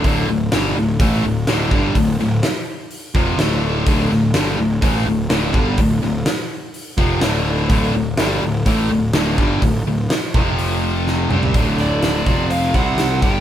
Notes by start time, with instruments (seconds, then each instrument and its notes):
0.04 picked electric bass D1, overdriven electric guitar D2 A2 D3, kick, open hi-hat
0.28 picked electric bass D1, overdriven electric guitar D2 A2
0.52 picked electric bass G1, overdriven electric guitar G2 D3 G3, snare, open hi-hat
0.76 picked electric bass D1, overdriven electric guitar D2 A2
1.00 picked electric bass A1, overdriven electric guitar A2 E3 A3, kick, open hi-hat
1.24 picked electric bass D1, overdriven electric guitar D2 A2
1.47 picked electric bass D1, overdriven electric guitar D2 A2 D3, snare, open hi-hat
1.71 picked electric bass G1, overdriven electric guitar G2 D3 G3, kick
1.95 picked electric bass D1, overdriven electric guitar D2 A2, kick, open hi-hat
2.19 picked electric bass D1, overdriven electric guitar D2 A2, snare
2.43 snare, open hi-hat
2.91 open hi-hat
3.15 picked electric bass F1, overdriven electric guitar F2 C3 F3, kick
3.38 picked electric bass D1, overdriven electric guitar D2 A2 D3, snare, open hi-hat
3.87 picked electric bass D1, overdriven electric guitar D2 A2 D3, kick, open hi-hat
4.10 picked electric bass D1, overdriven electric guitar D2 A2, snare
4.34 picked electric bass G1, overdriven electric guitar G2 D3 G3, snare, open hi-hat
4.58 picked electric bass D1, overdriven electric guitar D2 A2
4.82 picked electric bass A1, overdriven electric guitar A2 E3 A3, kick, open hi-hat
5.06 picked electric bass D1, overdriven electric guitar D2 A2
5.30 picked electric bass D1, overdriven electric guitar D2 A2 D3, snare, open hi-hat
5.54 picked electric bass G1, overdriven electric guitar G2 D3 G3, kick
5.78 picked electric bass D1, overdriven electric guitar D2 A2, kick, open hi-hat
6.02 picked electric bass D1, overdriven electric guitar D2 A2, snare
6.26 snare, open hi-hat
6.74 open hi-hat
6.98 picked electric bass F1, overdriven electric guitar F2 C3 F3, kick
7.21 picked electric bass D1, overdriven electric guitar D2 A2 D3, snare, open hi-hat
7.70 picked electric bass D1, overdriven electric guitar D2 A2 D3, kick, open hi-hat
7.94 picked electric bass D1, overdriven electric guitar D2 A2
8.17 picked electric bass G1, overdriven electric guitar G2 D3 G3, snare, open hi-hat
8.42 picked electric bass D1, overdriven electric guitar D2 A2
8.66 picked electric bass A1, overdriven electric guitar A2 E3 A3, kick, open hi-hat
8.90 picked electric bass D1, overdriven electric guitar D2 A2
9.13 picked electric bass D1, overdriven electric guitar D2 A2 D3, snare, open hi-hat
9.38 picked electric bass G1, overdriven electric guitar G2 D3 G3, kick
9.62 picked electric bass D1, overdriven electric guitar D2 A2, kick, open hi-hat
9.85 picked electric bass D1, overdriven electric guitar D2 A2
10.10 snare, open hi-hat
10.34 picked electric bass F1, overdriven electric guitar F2 C3 F3, kick
10.59 open hi-hat
11.07 snare
11.29 picked electric bass C2, overdriven electric guitar C3 G3 C4, mid tom
11.43 floor tom
11.54 picked electric bass D1, overdriven electric guitar D2 A2 D3, steel-string acoustic guitar D3 D4 F#4 A4, kick, open hi-hat
11.79 lead electric guitar D5, snare, open hi-hat
12.03 snare, open hi-hat
12.26 picked electric bass F1, overdriven electric guitar F2 C3 F3, steel-string acoustic guitar C4 F4, kick, open hi-hat
12.50 steel-string acoustic guitar F3 C4 F4 C5, lead electric guitar F5, open hi-hat
12.62 snare
12.74 picked electric bass C2, overdriven electric guitar C3 G3 C4, steel-string acoustic guitar C3 G3 C4 G4, lead electric guitar F#5, kick, open hi-hat
12.98 snare, open hi-hat
13.22 picked electric bass G1, overdriven electric guitar G2 D3 G3, steel-string acoustic guitar G4 D5, lead electric guitar G5, kick, open hi-hat